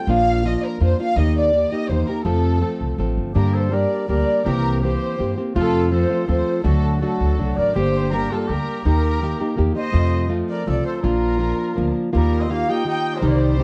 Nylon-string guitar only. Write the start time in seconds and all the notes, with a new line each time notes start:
0.08 A#2 F3 A#3 D4 F4
0.44 F3 A#3 D4 F4
0.80 F3 A#3 D4 F4
1.00 A#3 D4 F4
1.18 D#3 A#3 D#4 G4
1.53 D#3 A#3 D#4 G4
1.72 A#3 D#4 G4
1.90 D#3 A#3 D#4 G4
2.09 A#3 D#4 G4
2.25 F2 C3 F3 A3 C4 A4
2.61 F3 A3 C4 A4
2.98 F3 A3 C4 A4
3.35 G2 D3 G3 A#3 D4 G4
3.71 G3 A#3 D4 G4
4.08 G3 A#3 D4 G4
4.45 C3 E3 A#3 C4 G4
4.83 E3 A#3 C4 G4
5.18 E3 A#3 C4 G4
5.38 A#3 C4 G4
5.55 F2 C3 F3 A3 C4 F4
5.91 F3 A3 C4 F4
6.10 F3 A3 C4 F4
6.28 F3 A3 C4 F4
6.64 D3 F#3 A3 D4 F#4
7.01 F#3 A3 D4 F#4
7.38 F#3 A3 D4 F#4
7.75 G2 D3 G3 A#3 D4 G4
8.12 G3 A#3 D4 G4
8.32 G3 A#3 D4 G4
8.50 G3 A#3 D4 G4
8.85 D#3 A#3 D#4 G4
9.23 D#3 A#3 D#4 G4
9.40 A#3 D#4 G4
9.56 D#3 A#3 D#4 G4
9.75 A#3 D#4 G4
9.92 F2 C3 F3 A3 C4 F4
10.29 F3 A3 C4 F4
10.66 F3 A3 C4 F4
11.02 A#2 F3 A#3 D4 F4
11.39 F3 A#3 D4 F4
11.76 F3 A#3 D4 F4
12.13 D#3 A#3 F4 G4
12.49 D#3 A#3 F4 G4
12.69 A#3 F4 G4
12.85 D#3 A#3 F4 G4
13.22 C3 D#3 C4 D#4 G4
13.58 D#3 C4 D#4 G4